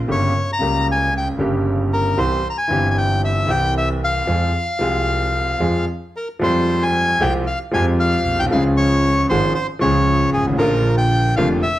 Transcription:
0.08 grand piano G1 G2 C#3 G3 A#3 G4, double bass G1, bandoneon C#5
0.53 bandoneon A#5
0.59 grand piano C#2 C#3 G3 A#3 G4, double bass C#2
0.92 bandoneon G#5
1.17 bandoneon G5
1.38 grand piano G1 G2 C#3 G3 A#3 G4, double bass G1
1.93 bandoneon A#4
2.17 double bass C2, grand piano C2 C3 E3 G3 C4 G4, bandoneon C5
2.50 bandoneon A#5
2.58 bandoneon G#5
2.68 double bass G1, grand piano G1 G2 E3 G3 C4
2.72 grand piano G4
2.91 bandoneon G#5
2.98 bandoneon G5
3.25 bandoneon E5
3.46 grand piano C2 C3 E3 G3 C4, double bass C2
3.50 grand piano G4, bandoneon G5
3.78 bandoneon E5
4.04 bandoneon F5
4.27 double bass F2, grand piano F2 F3 G#3 C4 G#4
4.79 double bass C2, grand piano C2 C3 F3 G#3 C4
4.83 grand piano G#4
5.59 double bass F2, grand piano F2 F3 G#3 C4 G#4
6.16 bandoneon A#4
6.41 double bass F2, grand piano F2 F3 G3 G#3 C4, bandoneon C5
6.83 bandoneon G#5
7.20 double bass C2, grand piano C2 C3 F3 G#3 C4 G4, bandoneon G5
7.47 bandoneon F5
7.71 grand piano F2 F3 G#3 C4, double bass F2, bandoneon G#5
7.76 grand piano G4
8.00 bandoneon F5
8.26 double bass B1
8.32 grand piano A#1
8.39 grand piano B1, bandoneon G5
8.46 grand piano C2
8.51 double bass C#2, grand piano C#2 C#3 F3 G#3 C#4, bandoneon F5
8.55 grand piano G#4
8.77 bandoneon C#5
9.29 grand piano G#1 G#2 F3 G#3 C#4 G#4, double bass G#1, bandoneon C5
9.55 bandoneon C5
9.79 grand piano C#2 C#3 F3 G#3 C#4, double bass C#2, bandoneon C#5
9.83 grand piano G#4
10.34 double bass G#1, bandoneon G#4
10.41 grand piano G1
10.47 grand piano G#1
10.53 grand piano A1 D3
10.58 grand piano A#1 A#2 F3 A#3 F4, double bass A#1, bandoneon A#4
10.98 bandoneon G5
11.36 grand piano F1 F2 D3 F3 A#3 F4, double bass F1, bandoneon F5
11.63 bandoneon E5

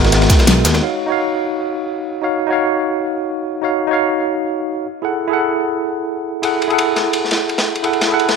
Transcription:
Already playing: analog synth bass G#1, tine electric piano G#3 B3 F#4 A#4
0.04 snare, ride
0.12 snare, closed hi-hat, ride
0.21 snare, ride
0.30 kick, snare, closed hi-hat, ride, ride bell, shaker
0.39 snare, ride, shaker
0.47 analog synth bass B1, snare, closed hi-hat, ride
0.65 analog synth bass D#2, snare, closed hi-hat, ride, ride bell, shaker
0.74 cross-stick, snare, ride, shaker
0.81 tine electric piano D#4 F#4 C#5 F5
1.06 tine electric piano D#4 F#4 C#5
1.12 tine electric piano F5
2.21 tine electric piano D#4 F#4 C#5 F5
2.47 tine electric piano D#4 F#4 C#5
2.53 tine electric piano F5
3.62 tine electric piano D#4 F#4 C#5 F5
3.87 tine electric piano D#4 F#4 C#5
3.93 tine electric piano F5
5.02 tine electric piano E4 G#4 A4 F#5
5.28 tine electric piano E4 G#4 A4
5.33 tine electric piano F#5
6.42 tine electric piano E4 G#4 A4 F#5, ride
6.62 ride
6.68 tine electric piano E4 G#4 A4, ride
6.73 tine electric piano F#5
6.78 ride
6.96 snare, ride
7.13 ride
7.24 snare
7.31 snare, ride
7.49 ride
7.58 snare, ride
7.75 ride
7.83 tine electric piano E4 G#4 A4 F#5, ride
7.93 ride
8.01 snare, ride
8.08 tine electric piano E4 G#4 A4
8.14 tine electric piano F#5
8.19 ride
8.29 snare, ride

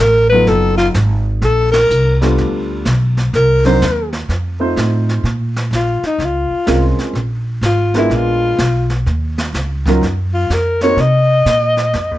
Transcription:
0.00 upright bass A1, alto saxophone A#4
0.29 grand piano F#3 B3 D#4 F4 A4, alto saxophone B4
0.47 upright bass F#1, alto saxophone A4, brush sweep, snare
0.77 alto saxophone F4, snare
0.94 upright bass G#1, snare, hi-hat pedal
1.42 upright bass A#1, alto saxophone A4, brush sweep, snare
1.72 alto saxophone A#4, snare, ride
1.90 upright bass C2, hi-hat pedal
2.21 grand piano G3 B3 D4 F4 A4, snare
2.38 upright bass D2, brush sweep, snare
2.85 upright bass B1, snare, hi-hat pedal
3.17 snare
3.33 upright bass C2, alto saxophone A#4, brush sweep, snare
3.64 grand piano F#3 C4 D4 D#4 A#4, alto saxophone C5, snare
3.82 upright bass D#2, snare, hi-hat pedal
4.13 snare
4.29 upright bass F2, brush sweep, snare
4.60 grand piano A3 C4 D#4 F4 C5
4.76 upright bass A2, snare, hi-hat pedal
5.09 snare
5.23 upright bass A#2, brush sweep, snare
5.56 snare
5.71 upright bass A#1, snare, hi-hat pedal
5.75 alto saxophone F4
6.03 alto saxophone D#4, muted upright bass stroke, snare
6.18 upright bass C#2, brush sweep, snare
6.24 alto saxophone F4
6.51 muted upright bass stroke
6.66 upright bass C2, grand piano G#3 C4 C#4 F4 A#4, snare, hi-hat pedal
6.98 muted upright bass stroke, snare
7.13 upright bass A#1, brush sweep, snare
7.61 upright bass G#1, snare, hi-hat pedal
7.65 alto saxophone F4
7.94 grand piano G#3 B3 D4 F4 A#4, alto saxophone E4, snare
8.10 upright bass A#1, brush sweep, snare
8.15 alto saxophone F4
8.58 upright bass B1, snare, hi-hat pedal
8.90 snare
9.06 upright bass D#2, brush sweep, snare
9.38 snare
9.53 upright bass C#2, snare, hi-hat pedal
9.86 grand piano F#3 C#4 D#4 F4 A#4, kick, snare
10.01 upright bass F#2, brush sweep, snare
10.34 alto saxophone F4
10.50 upright bass F2, alto saxophone A#4, snare, hi-hat pedal
10.81 grand piano A#3 C4 D#4 F#4 A#4, alto saxophone C#5, snare
10.97 upright bass C3, alto saxophone D#5, brush sweep, snare
11.45 upright bass A#2, snare, hi-hat pedal
11.77 snare
11.93 upright bass F2, brush sweep, snare
12.11 upright bass D#2

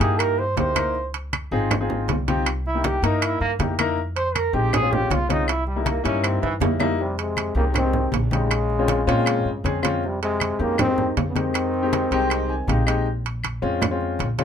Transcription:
0.00 upright bass G2, grand piano A#3 D#4 E4 G4, trombone G#4, high conga, high timbale
0.18 trombone A#4, high conga, high timbale, claves
0.39 trombone C5, high conga
0.56 upright bass C#2, grand piano A#3 D#4 E4 G4, trombone C5, high conga, high timbale, low timbale
0.75 grand piano A#3 D#4 E4 A#4, high conga, high timbale, claves
0.95 high conga
1.14 high conga, high timbale
1.33 high conga, high timbale, claves
1.51 upright bass G#1, grand piano C4 D#4 F4 G#4, high conga
1.71 high conga, low conga, high timbale, claves
1.81 grand piano C4 D#4 F4 G#4
1.90 high conga, low conga
2.08 upright bass C2, high conga, high timbale, low timbale
2.28 grand piano C4 D#4 F4 G4, high conga, high timbale
2.46 high timbale, claves
2.66 trombone E4, high conga
2.75 grand piano A#3 D#4 E4 G4
2.84 trombone G4, high conga, high timbale
3.02 upright bass G2, grand piano A#3 D#4 E4 A#4, trombone D#4, high timbale
3.22 trombone E4, high conga, high timbale, claves
3.41 upright bass G2, trombone A#3, high conga
3.59 upright bass F2, grand piano A#3 D#4 E4 G4, high conga, high timbale, low timbale
3.79 grand piano A#3 D#4 E4 A#4, high conga, high timbale, claves
3.98 high conga
4.16 trombone C5, high conga, high timbale
4.35 trombone A#4, high conga, high timbale, claves
4.53 upright bass A#1, grand piano G#3 C4 D#4 G4, trombone G4, high conga
4.73 trombone G#4, high conga, low conga, high timbale, claves
4.82 grand piano G#3 C4 C#4 F4
4.93 trombone G4, high conga, low conga
5.10 upright bass C2, trombone F4, high conga, high timbale, low timbale
5.29 grand piano G#3 C4 C#4 F4, trombone D#4, high conga, high timbale
5.48 trombone E4, high conga, high timbale, claves
5.67 trombone G3, high conga
5.76 grand piano G3 A#3 D#4 E4
5.86 trombone A#3, high conga, high timbale
6.04 upright bass G2, grand piano G3 A#3 D#4 E4, trombone C#4, high conga, high timbale
6.24 trombone C4, high conga, high timbale, claves
6.42 upright bass G2, trombone E3, high conga, high timbale
6.60 upright bass F2, grand piano G3 A#3 D#4 E4, high conga, low timbale
6.80 grand piano G3 A#3 D#4 E4, high conga, low timbale, claves
6.99 trombone C3 G3, high conga
7.18 trombone C3 G#3, high conga, high timbale
7.37 high conga, high timbale, claves
7.55 upright bass C2, trombone C#3 A#3, grand piano G#3 C4 D#4 G4, high conga
7.74 trombone D#3 C4, high conga, low conga, high timbale, claves
7.84 grand piano G#3 C4 D#4 G4
7.93 high conga, low conga
8.12 upright bass A#1, high conga, high timbale, low timbale
8.31 trombone C#3 G#3, grand piano G#3 C4 D#4 G4, high conga, high timbale
8.51 high timbale, claves
8.70 high conga
8.79 grand piano G#3 C4 C#4 F4
8.88 high conga, high timbale
9.07 upright bass A#2, grand piano G#3 C4 C#4 F4, high conga, high timbale
9.26 high conga, high timbale, claves
9.45 upright bass G2, high conga
9.64 upright bass F2, grand piano G#3 C4 C#4 G#4, high conga, high timbale
9.83 grand piano G#3 C4 C#4 F4, high conga, high timbale, claves
10.03 trombone C3 G3, high conga
10.22 trombone C3 G#3, high conga, high timbale
10.40 high conga, high timbale, claves
10.59 upright bass F2, trombone C#3 A#3, grand piano G#3 C4 D#4 G4, high conga
10.78 trombone D#3 C4, high conga, low conga, high timbale, claves
10.87 grand piano G#3 C4 D#4 G4
10.98 high conga, low conga
11.17 upright bass F2, high conga, high timbale, low timbale
11.28 trombone C#3 B3
11.35 trombone D#3 C4, grand piano G#3 C4 D#4 G4, high conga, high timbale
11.54 high timbale, claves
11.74 high conga
11.83 grand piano G#3 C4 D#4 G4
11.93 high conga, high timbale
12.11 upright bass C2, grand piano G#3 C4 D#4 G4, high conga, high timbale
12.30 high conga, high timbale, claves
12.49 grand piano G#5, high conga
12.68 upright bass A#1, grand piano G#3 C4 D#4 G4 F5, high conga, high timbale
12.86 grand piano G#3 C4 D#4 G4 D#5, high timbale, claves
13.06 high conga
13.25 high conga, high timbale
13.44 high conga, high timbale, claves
13.62 upright bass F2, grand piano G#3 C4 C#4 F4, high conga
13.82 high conga, low conga, high timbale, claves
13.91 grand piano G#3 C4 C#4 F4
14.01 high conga
14.19 upright bass A#1, high conga, high timbale
14.38 grand piano G#3 C4 C#4 F4, high conga, high timbale

